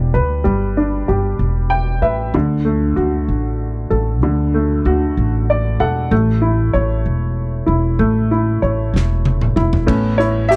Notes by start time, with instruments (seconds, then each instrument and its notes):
Already playing: upright bass E1, upright piano G3 D4 G4
0.14 upright bass D2, upright piano B4
0.44 upright bass G1, upright piano G3
0.77 upright piano D4
1.08 upright bass G1, upright piano G4
1.39 upright bass E1
1.70 upright piano G5
2.02 upright bass A1, upright piano B4 E5
2.34 upright bass D2, upright piano D3
2.65 upright piano A3
2.96 upright bass D2, upright piano F#4
3.28 upright bass A1
3.90 upright bass A1, upright piano A4
4.23 upright bass D2, upright piano D3
4.54 upright piano A3
4.85 upright bass D2, upright piano F#4
5.17 upright bass A1
5.50 upright piano D5
5.80 upright bass E1, upright piano A4 F#5
6.11 upright bass A1, upright piano A3
6.42 upright piano E4
6.73 upright bass A1, upright piano C#5
7.06 upright bass E1
7.66 upright bass E1, upright piano E4
7.99 upright bass A1, upright piano A3
8.31 upright piano E4
8.62 upright bass A1, upright piano C#5
8.94 upright bass E1, snare
9.25 high tom
9.41 mid tom
9.56 upright bass E1, upright piano E4, mid tom
9.73 floor tom
9.86 upright bass A1, upright piano A3 B3 C#4, kick, crash
10.18 upright piano E4 C#5, closed hi-hat
10.49 upright piano G4 E5, closed hi-hat